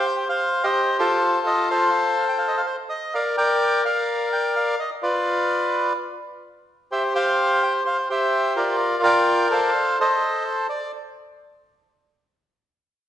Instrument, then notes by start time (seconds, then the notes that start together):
bandoneon
Already playing: G4 C5
0.06 G5
0.29 C5 F5
0.64 G4 C5 D#5
0.99 F4 A4 C5
1.47 D#5
1.70 A4 C5 F5
2.29 G5
2.38 F5
2.48 D#5
2.57 F5
2.66 C5
2.89 D#5
3.14 A#4 D5 F5
3.37 A#4 D5 G5
3.85 A#4 D5 F5
4.33 G5
4.56 F5
4.79 D#5
5.03 F4 B4 D5
6.92 G4 C5 E5
7.15 C5 F5
7.63 G5
7.85 C5 F5
8.10 G4 C5 E5
8.56 F4 A#4 D5
9.03 A#4 D5 G5
9.51 A4 C5 F5
10.00 A4 C5 D#5
10.69 D5